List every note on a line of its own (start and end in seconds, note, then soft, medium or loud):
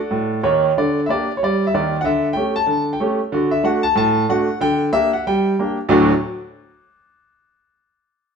0.00 0.40 A4 medium
0.00 0.41 D5 medium
0.00 0.29 F#5 medium
0.11 0.38 A2 medium
0.43 0.69 D#2 medium
0.43 0.69 D#3 medium
0.43 0.71 C#5 medium
0.78 1.04 D3 medium
0.78 0.99 D5 medium
1.06 1.26 A#3 soft
1.06 1.27 D4 soft
1.06 1.10 E5 medium
1.10 1.27 G4 soft
1.10 1.31 D5 medium
1.37 1.42 C#5 medium
1.43 1.69 G3 medium
1.43 1.64 D5 medium
1.67 1.73 E5 medium
1.74 1.99 D#2 medium
1.74 1.99 D#3 medium
1.74 1.95 D5 medium
2.01 2.32 D3 medium
2.01 2.06 F#5 medium
2.05 2.27 E5 medium
2.33 2.54 A3 soft
2.33 2.54 C#4 soft
2.33 2.54 G5 medium
2.38 2.55 G4 soft
2.56 2.88 A5 medium
2.67 2.95 D3 medium
2.93 3.00 G5 medium
3.00 3.18 A3 medium
3.00 3.18 C#4 soft
3.00 3.19 G4 medium
3.32 3.60 D3 medium
3.32 3.51 F#4 medium
3.51 3.62 E5 medium
3.63 3.81 A3 medium
3.63 3.82 D4 medium
3.63 3.82 F#4 medium
3.63 3.81 F#5 medium
3.83 3.94 A5 medium
3.95 4.23 A2 medium
3.95 4.24 A5 medium
4.29 4.47 A3 medium
4.29 4.47 D4 medium
4.29 4.47 F#4 medium
4.29 4.57 F#5 medium
4.61 4.88 D3 medium
4.61 4.89 G5 loud
4.93 5.10 A#3 medium
4.93 5.11 D4 soft
4.93 5.11 G4 medium
4.93 5.09 E5 loud
5.13 5.24 F#5 medium
5.27 5.54 G3 medium
5.27 5.70 G5 medium
5.59 5.77 A#3 soft
5.59 5.77 D4 soft
5.59 5.77 G4 soft
5.89 6.10 D2 loud
5.89 6.10 A2 medium
5.89 6.10 F#3 medium
5.89 6.10 A3 medium
5.89 6.10 D4 medium
5.89 6.10 F#4 medium
5.89 6.11 D5 medium